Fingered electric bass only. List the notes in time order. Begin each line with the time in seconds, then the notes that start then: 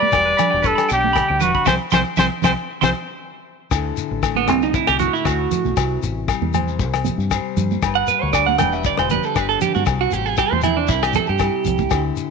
0.14 E1
0.54 E1
0.91 B1
1.30 D2
1.42 E1
1.67 C2
1.93 C2
2.18 C2
2.44 C2
2.83 C2
3.71 D2
4.11 A1
4.49 C2
4.89 C2
5.26 D2
5.65 B1
5.77 C2
6.03 A1
6.42 E2
6.79 C2
7.18 G2
7.57 G2
7.83 G1
8.23 D2
8.61 E1
8.99 E1
9.36 G1
9.76 G2
9.87 C2
10.13 A1
10.52 E2
10.89 C2
11.29 G2
11.67 C2
11.91 D2